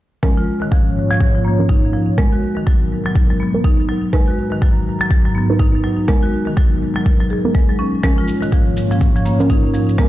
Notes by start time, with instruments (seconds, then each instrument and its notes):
0.23 analog synth pad G#2 A#3 C#4 F4 C#5, synth stab F3 C#4 A#4, marimba G#3, kick
0.37 marimba F4
0.62 marimba D#3
0.72 marimba F3, kick
1.10 marimba F3
1.21 kick
1.35 marimba F3
1.45 marimba A#3
1.59 synth stab F3 C#4 A#4
1.69 marimba D#4, kick
1.94 marimba F3
2.18 analog synth pad G#3 B3 D#4 A#4, synth stab G#3 B3 A#4, marimba G#3, kick
2.32 marimba F#4
2.57 marimba D#3
2.67 marimba F#3, kick
3.06 marimba F#3
3.16 kick
3.30 marimba F#3
3.40 marimba B3
3.54 synth stab G#3 B3 A#4
3.64 marimba D#4, kick
3.89 marimba F#3
4.13 analog synth pad G#2 D#4 F#4 A#5, marimba G#3, synth stab D#4 A#4 B4, kick
4.28 marimba F#4
4.52 marimba D#3
4.62 marimba F#3, kick
5.01 marimba F#3
5.11 kick
5.25 marimba F#3
5.35 marimba B3
5.50 synth stab D#4 A#4 B4
5.59 marimba D#4, kick
5.84 marimba F#3
6.08 marimba G#3, synth stab G#3 B3 A#4, analog synth pad G#3 B3 A#4, kick
6.23 marimba F#4
6.47 marimba D#3
6.57 marimba F#3, kick
6.96 marimba F#3
7.06 kick
7.20 marimba F#3
7.30 marimba G#4
7.45 synth stab G#3 B3 A#4
7.55 marimba G#3, kick
7.69 marimba F#3
7.79 marimba C#4
8.03 analog synth pad G#2 A#3 C#4 F4 C#5, synth stab F3 C#4 A#4, marimba G#3, kick, shaker
8.18 marimba F4
8.28 shaker
8.42 marimba D#3, shaker
8.52 marimba F3, kick, shaker
8.77 shaker
8.91 marimba F3, shaker
9.01 kick, shaker
9.16 marimba F3, shaker
9.25 marimba A#3, shaker
9.40 synth stab F3 C#4 A#4, shaker
9.50 marimba D#4, kick, shaker
9.74 marimba F3, shaker
9.89 shaker
9.98 analog synth pad G#3 B3 D#4 A#4, marimba G#3, synth stab G#3 B3 A#4, kick, shaker